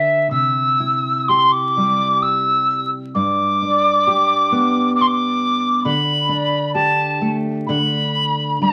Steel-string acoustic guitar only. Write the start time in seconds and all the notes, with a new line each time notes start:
Already playing: D3
0.31 C3
0.80 E4
1.29 G4
1.77 G3
3.15 G2
3.62 D4
4.07 G4
4.52 B3
5.85 D3
6.29 D4
6.75 G4
7.21 A3
7.69 D3
8.61 G3